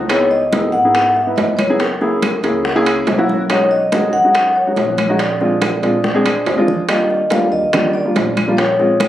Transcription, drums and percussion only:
0.09 high bongo medium
0.09 high conga soft
0.09 high timbale medium
0.09 claves medium
0.31 high bongo soft
0.31 high conga soft
0.53 high bongo medium
0.53 high conga medium
0.53 high timbale medium
0.53 low timbale medium
0.74 high conga soft
0.95 high bongo medium
0.95 high conga soft
0.95 high timbale medium
0.95 claves medium
1.16 high bongo soft
1.16 high conga soft
1.38 high bongo soft
1.38 low bongo medium
1.38 high conga medium
1.38 high timbale medium
1.38 low timbale medium
1.59 high bongo soft
1.59 high conga medium
1.59 high timbale medium
1.59 claves medium
1.80 high bongo medium
1.80 high conga soft
1.80 high timbale medium
2.01 high bongo soft
2.01 high conga soft
2.22 high bongo medium
2.22 high conga medium
2.22 high timbale medium
2.22 low timbale soft
2.22 claves medium
2.44 high conga soft
2.44 high timbale medium
2.65 high bongo medium
2.65 high conga soft
2.86 high bongo soft
2.86 high conga soft
2.86 high timbale medium
2.86 claves medium
3.07 high bongo soft
3.07 low bongo medium
3.07 high conga medium
3.07 high timbale medium
3.07 low timbale medium
3.29 high bongo soft
3.29 high conga medium
3.50 high bongo medium
3.50 high conga soft
3.50 high timbale medium
3.50 claves medium
3.71 high bongo soft
3.71 high conga soft
3.92 high bongo medium
3.92 high conga medium
3.92 high timbale medium
3.92 low timbale medium
4.14 high conga soft
4.34 high bongo medium
4.34 high conga soft
4.34 high timbale medium
4.34 claves medium
4.56 high bongo soft
4.56 high conga soft
4.76 high bongo soft
4.76 low bongo medium
4.76 high conga medium
4.76 high timbale medium
4.76 low timbale medium
4.98 high bongo soft
4.98 high conga medium
4.98 high timbale medium
4.98 claves medium
5.19 high bongo medium
5.19 high conga soft
5.19 high timbale medium
5.41 high bongo soft
5.41 high conga soft
5.62 high bongo medium
5.62 high conga medium
5.62 high timbale medium
5.62 low timbale medium
5.62 claves medium
5.83 high conga soft
5.83 high timbale soft
6.04 high bongo medium
6.04 high conga medium
6.25 high bongo soft
6.25 high conga medium
6.25 high timbale medium
6.25 claves medium
6.46 high bongo soft
6.46 low bongo medium
6.46 high timbale medium
6.46 low timbale medium
6.68 high bongo soft
6.68 low conga medium
6.89 high bongo medium
6.89 high conga soft
6.89 high timbale medium
6.89 claves medium
7.10 high bongo soft
7.10 high conga soft
7.30 high bongo medium
7.30 high conga medium
7.30 high timbale medium
7.30 low timbale medium
7.53 high conga soft
7.73 high bongo medium
7.73 high conga soft
7.73 low conga medium
7.73 high timbale medium
7.73 claves medium
7.95 high bongo soft
7.95 high conga soft
8.16 high bongo soft
8.16 low bongo medium
8.16 high conga medium
8.16 high timbale medium
8.16 low timbale medium
8.37 high bongo soft
8.37 high conga medium
8.37 high timbale medium
8.37 claves medium
8.58 high bongo medium
8.58 high conga soft
8.58 high timbale medium
8.80 high bongo soft
8.80 high conga soft
9.00 high bongo medium
9.00 high conga medium
9.00 high timbale medium
9.00 low timbale medium
9.00 claves medium

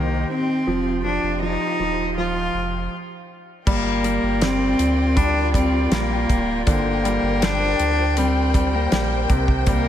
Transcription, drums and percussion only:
3.67 kick loud
3.67 crash loud
4.04 closed hi-hat medium
4.42 snare loud
4.42 closed hi-hat loud
4.79 closed hi-hat medium
5.17 kick medium
5.17 closed hi-hat medium
5.54 kick medium
5.54 closed hi-hat medium
5.92 snare loud
5.92 closed hi-hat medium
6.30 kick medium
6.30 closed hi-hat medium
6.67 kick loud
6.67 closed hi-hat medium
7.05 closed hi-hat medium
7.42 snare loud
7.42 closed hi-hat loud
7.79 closed hi-hat medium
8.17 closed hi-hat medium
8.54 kick medium
8.54 closed hi-hat medium
8.92 snare loud
8.92 closed hi-hat medium
9.30 kick medium
9.30 closed hi-hat medium
9.48 kick medium
9.67 kick loud
9.67 closed hi-hat medium

